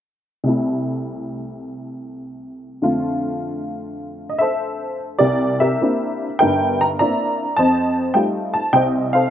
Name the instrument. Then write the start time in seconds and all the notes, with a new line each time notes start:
honky-tonk piano
0.44 C2 C3 A3
0.49 E4
2.82 F2 D3 A3 F4
4.29 D#5
4.39 A4 C5 E5
5.19 C2 G4 A#4 D5
5.60 G4 A#4 E5
5.81 A#3 C4 D4 E4
6.39 G1 G2 A#4 E5 G5
6.81 A#5
6.99 A#3 C4 D4 E4 D5 E5 A#5
7.57 F2 C5 D#5 A5
8.14 G3 A3 D#4 F4 G5
8.54 A5
8.73 C2 C5 D#5 G5
9.13 A4 C5 F5